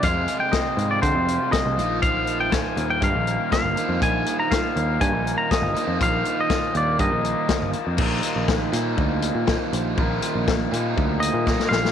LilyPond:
<<
  \new Staff \with { instrumentName = "Clean electric guitar" } { \time 4/4 \key bes \mixolydian \tempo 4 = 121 f''8. g''16 ees''8. d''16 c''4 ees''4 | f''8. g''16 aes''8. g''16 f''4 f''4 | aes''8. bes''16 f''4 aes''8. bes''16 ees''4 | f''8. ees''8. d''8 ees''4. r8 |
r1 | r2 r8 ees''4 f''8 | }
  \new Staff \with { instrumentName = "Overdriven electric guitar" } { \time 4/4 \key bes \mixolydian <f, c f aes c' f'>2.~ <f, c f aes c' f'>8 <bes, ees bes ees' f'>8~ | <bes, ees bes ees' f'>2.~ <bes, ees bes ees' f'>8 <bes, ees bes ees' f'>8~ | <bes, ees bes ees' f'>2.~ <bes, ees bes ees' f'>8 <bes, ees bes ees' f'>8~ | <bes, ees bes ees' f'>2.~ <bes, ees bes ees' f'>8 r8 |
<bes, ees bes ees' f'>4. <bes, ees bes ees' f'>4. <bes, ees bes ees' f'>4 | <bes, ees bes ees' f'>4. <bes, ees bes ees' f'>4. <bes, ees bes ees' f'>4 | }
  \new Staff \with { instrumentName = "Overdriven electric guitar" } { \clef bass \time 4/4 \key bes \mixolydian aes8 aes8 c'8 f'8 g'8 f'8 aes8 f8 | f8 f8 f8 bes8 ees'8 bes8 f8 f8 | f8 f8 f8 bes8 ees'8 bes8 f8 f8 | f8 f8 f8 bes8 ees'8 bes8 f8 f8 |
<f bes ees'>4. <f bes ees'>2~ <f bes ees'>8 | <f bes ees'>4. <f bes ees'>2~ <f bes ees'>8 | }
  \new Staff \with { instrumentName = "Picked electric bass" } { \clef bass \time 4/4 \key bes \mixolydian f,8 r4 aes,8 d16 f,8 r8 c,16 bes,,8~ | bes,,4. ees,8 g,16 bes,,8 r8 g,,16 r16 f,16 | bes,,8 r4 ees,8 g,16 bes,,8 r8 g,,16 r16 f,16 | bes,,8 r4 ees,8 g,16 bes,,8 r8 g,,16 r16 f,16 |
bes,,8 r16 bes,,8. bes,8 d,8. bes,8 r16 bes,,8 | bes,,8 r16 bes,,8. bes,8 d,8. bes,8 r16 bes,,8 | }
  \new DrumStaff \with { instrumentName = "Drums" } \drummode { \time 4/4 <hh bd>8 hh8 <hh bd sn>8 hh8 <hh bd>8 hh8 <hh bd sn>8 hh8 | <hh bd>8 hh8 <hh bd sn>8 hh8 <hh bd>8 hh8 <hh bd sn>8 hh8 | <hh bd>8 hh8 <hh bd sn>8 hh8 <hh bd>8 hh8 <hh bd sn>8 hh8 | <hh bd>8 hh8 <hh bd sn>8 hh8 <hh bd>8 hh8 <hh bd sn>8 hh8 |
<cymc bd>8 hh8 <bd sn>8 <hh sn>8 bd8 hh8 <bd sn>8 hh8 | bd8 hh8 <bd sn>8 hh8 bd8 hh8 <bd sn>16 sn16 sn16 sn16 | }
>>